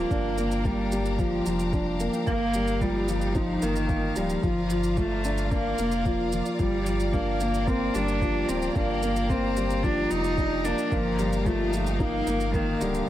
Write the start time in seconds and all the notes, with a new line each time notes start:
Already playing: F3 G3 A#3 D4 G4 F5 A#5
0.11 G1 D4, kick, shaker
0.38 A#3, shaker
0.51 shaker
0.65 G3 A#3, kick, shaker
0.92 G3, shaker
1.06 shaker
1.18 F3, kick, shaker
1.46 F1 F3, shaker
1.59 shaker
1.73 D4, kick, shaker
2.00 A#3, shaker
2.13 shaker
2.27 G1 A#3 D#4, kick, shaker
2.54 G3, shaker
2.67 shaker
2.81 F3 G3, kick, shaker
3.08 F3, shaker
3.21 shaker
3.35 F3 D#4, kick, shaker
3.62 G1 D#3 A#3, shaker
3.76 shaker
3.89 A#3, kick, shaker
4.16 D1 F3 G3, shaker
4.30 shaker
4.43 G1 F3 F4 D5 A#5, kick, shaker
4.70 F3, shaker
4.84 shaker
4.97 A3 F4, kick, shaker
5.24 D4, shaker
5.38 shaker
5.51 A#3 D4, kick, shaker
5.78 F1 A#3, shaker
5.92 shaker
6.05 F3, kick, shaker
6.32 F3, shaker
6.46 shaker
6.59 G1 F3 G3 G4, kick, shaker
6.86 F3, shaker
7.00 shaker
7.13 A#3 D4, kick, shaker
7.40 A#3, shaker
7.54 shaker
7.67 A#3 C4, kick, shaker
7.94 G1 G3 D4, shaker
8.08 shaker
8.21 F3, kick, shaker
8.48 D1 F3 C4, shaker
8.62 shaker
8.75 G1 A#3 D4, kick, shaker
9.03 A#3, shaker
9.16 shaker
9.30 A#3 C4, kick, shaker
9.57 G3, shaker
9.70 shaker
9.83 F3 D4, kick, shaker
10.10 F1 F3 D#4, shaker
10.24 shaker
10.38 D4, kick, shaker
10.65 A#3 D4, shaker
10.78 shaker
10.91 G1 F3 A#3 D#4 F5, kick, shaker
11.19 G3, shaker
11.33 shaker
11.46 F3 A3, kick, shaker
11.73 F3, shaker
11.87 shaker
11.99 A#3 D#4, kick, shaker
12.27 G1 A#3, shaker
12.40 shaker
12.54 D#3 A#3, kick, shaker
12.81 D1 D3 G3, shaker
12.95 shaker